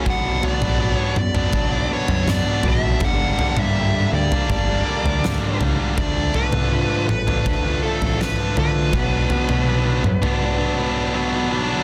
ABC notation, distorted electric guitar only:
X:1
M:4/4
L:1/16
Q:1/4=81
K:Glyd
V:1 name="Distorted electric guitar"
[B,,F,B,D]2 [B,,F,B,D] [F,B,D] [B,,F,B,D] [F,B,D]2 [F,B,D]2 [F,B,D] [B,,F,B,D]2 [B,,F,B,D] [F,B,D] [B,,F,B,D]2 | [G,,D,G,_B,D]2 [D,G,B,D] [G,B,D] [G,,D,G,B,D] [G,B,D]2 [G,B,D]2 [G,B,D] [D,G,B,D]2 [G,,D,G,B,D] [G,B,D] [D,G,B,D]2 | [D,=F,A,D]2 [D,F,A,D] [F,A,D] [D,F,A,D] [F,A,D]2 [F,A,D]2 [F,A,D] [D,F,A,D]2 [D,F,A,D] [F,A,D] [D,F,A,D]2 | [B,,F,B,D]2 [B,,F,B,D] [F,B,D] [B,,F,B,D] [F,B,D]2 [F,B,D]2 [F,B,D] [B,,F,B,D]2 [B,,F,B,D] [F,B,D] [B,,F,B,D]2 |]